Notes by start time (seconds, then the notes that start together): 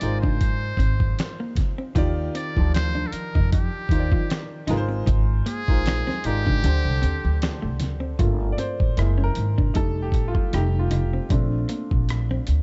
Already playing: D#4 F4 A#4 C5 D5 D#5
0.00 G#1 G#3 D#4 F4 A#4 C5 D5, muted hollow-body jazz guitar stroke, closed hi-hat, muted conga
0.21 G#2 D4 C5, kick, low conga
0.40 kick, closed hi-hat, high conga
0.77 G#1 C4, kick, closed hi-hat, muted conga
1.00 kick, high conga
1.19 finger snap, snare, closed hi-hat
1.40 A#3
1.55 muted hollow-body jazz guitar stroke, kick, snare, closed hi-hat, high conga, low conga
1.78 C4
1.95 D#2 D#3 D#4 F4 G4 D5, kick, closed hi-hat, low conga
2.35 C4 D5, closed hi-hat
2.57 D2 F3 D#4 F4 G4 A5, kick
2.74 C5, finger snap, snare, closed hi-hat
2.95 D4, high conga
3.07 A4
3.12 A#4, muted upright bass stroke, muted hollow-body jazz guitar stroke, closed hi-hat
3.35 F2 D#4, kick, low conga
3.52 D#4 G4, kick, closed hi-hat, muted conga, high conga
3.89 D#2 D#3 D#4 F4 G4 C5, muted hollow-body jazz guitar stroke, kick, closed hi-hat
3.99 D5
4.12 D#3 F4, kick, high conga
4.30 finger snap, muted hollow-body jazz guitar stroke, snare, closed hi-hat, muted conga
4.67 G#1 G#3 D#4 F4 A#4 B4, snare, closed hi-hat, high conga, low conga
4.77 C5
4.89 C4
5.06 G#1 D#4, kick, closed hi-hat, muted conga, low conga
5.46 A#3 G#4, closed hi-hat
5.68 A#1 G#3 D#4 F4 A#4 C5, kick
5.86 finger snap, snare, closed hi-hat, muted conga
6.07 C4, snare, high conga
6.24 G#1 G#3 D#4 F4 G4 A#4 D5, muted hollow-body jazz guitar stroke, closed hi-hat, muted conga
6.46 G#2 D4, kick, low conga
6.63 D2 D3 D4 G4 A4 C5, closed hi-hat, muted conga, high conga
6.85 C2
7.02 D#2 C4, closed hi-hat, muted conga
7.25 D2, high conga
7.42 finger snap, snare, closed hi-hat
7.62 C2 A3
7.80 D2, muted hollow-body jazz guitar stroke, snare, closed hi-hat, muted conga, high conga, low conga
8.00 C4
8.19 G1 A3 A#3 F4, kick, closed hi-hat, muted conga, low conga
8.52 D5
8.58 C4 C5, closed hi-hat, muted conga
8.80 A1, kick
8.97 F#1 G#3 A#3 E4, cross-stick, closed hi-hat
9.18 C#4, high conga
9.24 A#4
9.35 G#1, muted hollow-body jazz guitar stroke, closed hi-hat
9.58 D4, kick, low conga
9.74 F1 G3 A3 D#4 A4, kick, closed hi-hat, high conga
10.02 G4
10.12 A1, muted hollow-body jazz guitar stroke, kick, closed hi-hat
10.28 F4
10.35 F4, kick, high conga
10.53 F1 G3 A3 D#4 G4, muted hollow-body jazz guitar stroke, cross-stick, closed hi-hat, high conga
10.79 F4
10.90 D#4, cross-stick, closed hi-hat, muted conga, high conga, low conga
11.13 C4
11.29 A#1 A3 C4 D4, kick, closed hi-hat, low conga
11.68 A#3, closed hi-hat, muted conga
11.91 A#1, kick
12.09 cross-stick, closed hi-hat
12.30 C4, high conga
12.47 D2, muted hollow-body jazz guitar stroke, closed hi-hat, muted conga